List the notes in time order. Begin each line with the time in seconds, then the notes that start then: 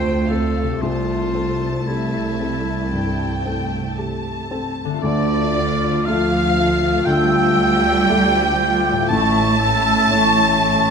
Already playing: D2 C3 A3 C4 F4 A4 C5 G5
0.28 C4 A4 F5
0.32 A4
0.63 C3
0.68 A3
0.72 G4
0.77 C5 A5
0.81 C2 A3 F4 C5
1.35 C4 A4
1.85 E4 G4 A4 E5
2.40 C4 A4
2.91 G2 G5
3.46 C4 A4
3.97 G4 A4 A5
4.51 C4 A4
4.85 D3
4.90 A3
4.94 F4
4.99 A4 D5
5.03 D2 D3 A3 F4 D5
5.55 A3 F4
6.06 D2 F3 A3 F4 A4 F5
6.57 A3 F4
7.06 D2 D3 G3 G5 E6
7.59 A3 F4
8.09 D2 A3 F4 A4 D6
8.59 A3 F4
8.92 A2
8.96 A3
9.01 E4
9.05 C#5 A5 C#6
9.10 A1 A2 A3 C#4 E4 A5
9.59 A3 E4 E6
10.10 A1 A3 E4 C#5 C#6
10.60 A3 E4 C#6